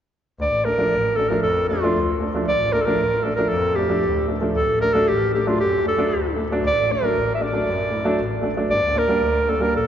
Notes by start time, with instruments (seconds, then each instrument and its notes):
0.39 double bass D2, clarinet D5
0.53 double bass A1
0.65 upright piano A3 D4, clarinet A#4
0.78 upright piano F3 A3 D4
0.91 double bass A1
1.16 upright piano A3 D4, clarinet A4
1.29 upright piano F3 A3 D4, clarinet A#4
1.43 double bass F2, clarinet A4
1.69 upright piano A3 D4, clarinet F4
1.83 upright piano F3 A3 D4
1.95 double bass D2
2.20 upright piano A3 D4
2.34 upright piano F3 A3 D4
2.47 double bass D2, clarinet D5
2.60 double bass A1
2.72 upright piano A3 D4, clarinet A#4
2.82 clarinet A4
2.86 upright piano F3 A3 D4, clarinet A#4
2.99 double bass A1
3.23 upright piano A3 D4, clarinet A4
3.36 upright piano F3 A3 D4, clarinet A#4
3.49 double bass F2, clarinet A4
3.76 upright piano A3 D4, clarinet G4
3.88 upright piano F3 A3 D4
4.03 double bass D2
4.28 upright piano A3 D4
4.41 upright piano F3 A3 D4
4.54 double bass D2, clarinet A4
4.68 double bass A1
4.80 upright piano A3 D4, clarinet A#4
4.93 upright piano F#3 A3 D4, clarinet A4
5.07 double bass A1, clarinet G4
5.34 upright piano A3 D4, clarinet G4
5.46 upright piano F#3 A3 D4, clarinet F4
5.59 double bass F#2, clarinet G4
5.84 upright piano A3 D4
5.88 clarinet A4
5.97 upright piano F#3 A3 D4
6.10 double bass D2
6.36 upright piano A3 D4
6.50 upright piano F#3 A3 D4
6.63 double bass D2
6.67 clarinet D5
6.77 double bass A1
6.88 upright piano A3 D4
6.92 clarinet A#4
7.01 upright piano F#3 A3 D4
7.16 double bass A1
7.35 clarinet E5
7.40 upright piano A3 D4, clarinet D5
7.52 upright piano F#3 A3 D4
7.67 double bass F#2
7.90 upright piano A3 E4
8.04 upright piano F#3 A3 D4
8.19 double bass A1
8.41 upright piano A3 D4
8.56 upright piano F#3 A3 D4
8.70 double bass G1, clarinet D5
8.84 double bass D2
8.94 upright piano A#3 D4
8.98 clarinet A#4
9.08 upright piano G3 A#3 D4
9.21 double bass D2
9.47 upright piano A#3 D4, clarinet A4
9.60 upright piano G3 A#3 D4, clarinet A#4
9.73 double bass A#1, clarinet A4